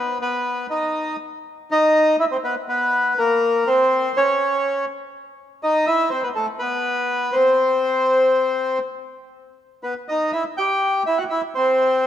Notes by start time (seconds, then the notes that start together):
Already playing: B3 B4
0.21 B3 B4
0.70 D#4 D#5
1.71 D#4 D#5
2.19 E4 E5
2.31 C4 C5
2.44 B3 B4
2.69 B3 B4
3.18 A#3 A#4
3.67 C4 C5
4.17 C#4 C#5
5.63 D#4 D#5
5.87 E4 E5
6.10 C4 C5
6.23 B3 B4
6.35 A3 A4
6.59 B3 B4
7.32 C4 C5
9.83 B3 B4
10.09 D#4 D#5
10.32 E4 E5
10.57 G4 G5
11.06 E4 E5
11.18 F#4 F#5
11.30 E4 E5
11.55 C4 C5